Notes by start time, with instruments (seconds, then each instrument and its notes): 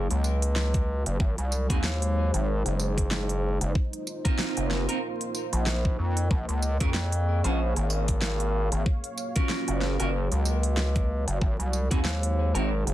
Already playing: analog synth pad F#3 A#3 C#5 F5
0.11 analog synth bass C#2, closed hi-hat
0.24 tambourine
0.42 closed hi-hat
0.56 snare
0.74 kick, closed hi-hat
1.06 analog synth bass F#1, closed hi-hat
1.20 analog synth bass G#1, analog synth pad G#3 D#4 C5, kick
1.38 analog synth bass C2, closed hi-hat
1.52 tambourine
1.70 analog synth bass D#2, clean electric guitar C4 D#4 F#4 G#4, kick, closed hi-hat
1.84 snare
2.02 closed hi-hat
2.34 analog synth bass G#1, closed hi-hat
2.66 analog synth bass F#1, closed hi-hat
2.80 tambourine
2.98 kick, closed hi-hat
3.11 snare
3.29 closed hi-hat
3.61 analog synth bass F#1, closed hi-hat
3.74 analog synth pad A#3 F4 C5, kick
3.93 closed hi-hat
4.07 tambourine
4.25 clean electric guitar C4 D#4 F4 A#4, kick, closed hi-hat
4.39 snare
4.57 analog synth bass F1, closed hi-hat
4.71 snare
4.89 clean electric guitar C4 D#4 F4 A#4, cross-stick, closed hi-hat
5.21 closed hi-hat
5.35 tambourine
5.53 analog synth bass A#1, closed hi-hat
5.66 snare
5.85 kick
5.99 analog synth bass F2
6.17 closed hi-hat
6.30 analog synth bass A#1, analog synth pad G#4 C#5 F5, kick
6.49 analog synth bass C#2, closed hi-hat
6.62 tambourine
6.80 analog synth bass F2, clean electric guitar C#4 F4 G#4 A#4, kick, closed hi-hat
6.94 snare
7.12 closed hi-hat
7.44 analog synth bass A#1, clean electric guitar C#4 F4 G#4 C5, closed hi-hat
7.76 analog synth bass G#1, closed hi-hat
7.90 tambourine
8.08 kick, closed hi-hat
8.22 snare
8.40 closed hi-hat
8.72 analog synth bass G#1, closed hi-hat
8.86 analog synth pad F#3 A#3, kick
9.04 closed hi-hat
9.18 tambourine
9.36 clean electric guitar C#4 F4 F#4 A#4, kick, closed hi-hat
9.49 snare
9.68 analog synth bass F#1, closed hi-hat
9.82 snare
9.99 analog synth bass F#1, clean electric guitar C#4 F4 F#4 A#4, cross-stick, closed hi-hat
10.32 analog synth bass C#2, closed hi-hat
10.45 tambourine
10.63 closed hi-hat
10.77 snare
10.96 kick, closed hi-hat
11.28 analog synth bass F#1, closed hi-hat
11.41 analog synth bass G#1, analog synth pad G#3 D#4 C5, kick
11.59 analog synth bass C2, closed hi-hat
11.73 tambourine
11.91 analog synth bass D#2, clean electric guitar C4 D#4 F#4 G#4, kick, closed hi-hat
12.05 snare
12.23 closed hi-hat
12.55 analog synth bass G#1, clean electric guitar C4 D#4 F#4 A#4, closed hi-hat
12.87 analog synth bass F#1, closed hi-hat